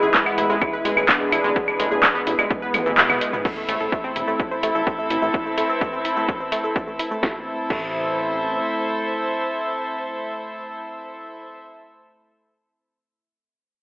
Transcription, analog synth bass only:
0.03 0.10 A1 medium
0.38 0.45 A1 medium
0.50 0.57 A1 medium
0.85 0.93 A1 loud
0.97 1.04 A1 medium
1.32 1.40 A1 medium
1.44 1.52 A1 medium
1.80 1.87 A1 medium
1.92 1.99 A1 medium
2.27 2.34 A1 medium
2.39 2.46 A1 medium
2.74 2.82 A1 medium
2.86 2.93 A1 medium
3.69 3.76 A1 loud
3.81 3.88 A1 medium
4.16 4.23 E1 loud
4.28 4.35 A1 medium
4.63 4.71 A1 medium
4.75 4.82 A1 medium
5.10 5.18 A1 medium
5.22 5.30 A1 medium
7.23 7.36 A1 loud
7.70 8.61 A1 medium

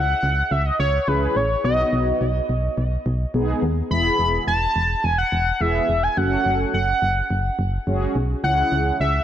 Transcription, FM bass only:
0.00 0.15 C#2 loud
0.23 0.43 C#2 medium
0.51 0.71 C#2 loud
0.80 0.99 C#2 loud
1.08 1.28 C#2 loud
1.36 1.56 A1 medium
1.64 1.84 B1 loud
1.93 2.13 B1 loud
2.21 2.41 B1 loud
2.49 2.69 B1 medium
2.78 2.97 B1 medium
3.06 3.26 B1 loud
3.34 3.54 B1 loud
3.63 3.82 D#2 medium
3.91 4.11 E1 loud
4.19 4.39 E1 medium
4.47 4.67 E1 medium
4.76 4.96 E1 loud
5.04 5.24 E1 loud
5.32 5.52 E1 loud
5.61 5.81 E1 loud
5.89 6.09 E1 medium
6.17 6.37 F#1 loud
6.46 6.65 F#1 loud
6.74 6.94 F#1 loud
7.02 7.22 F#1 loud
7.31 7.50 F#1 loud
7.59 7.79 F#1 loud
7.87 8.07 F#1 loud
8.15 8.35 B1 medium
8.44 8.64 C#2 loud
8.72 8.92 C#2 medium
9.00 9.20 C#2 medium

